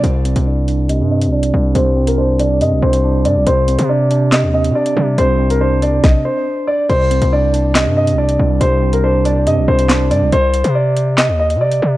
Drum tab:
CC |----------------|----------------|----------------|----------------|
HH |x-xx--x-x--x-x--|x--x--x-x--x--x-|x-xx--x-x--x-x--|x--x--x---------|
CP |----------------|----------------|--------x-------|----------------|
SD |----------------|----------------|--------o-------|--------o-------|
BD |----------------|----------------|----------------|--------o-------|

CC |x---------------|----------------|----------------|
HH |x-xx--x-x--x-x--|x--x--x-x--x--x-|x-xx--x-x--x-x--|
CP |--------x-------|------------x---|--------x-------|
SD |--------o-------|------------o---|--------o-------|
BD |----------------|----------------|----------------|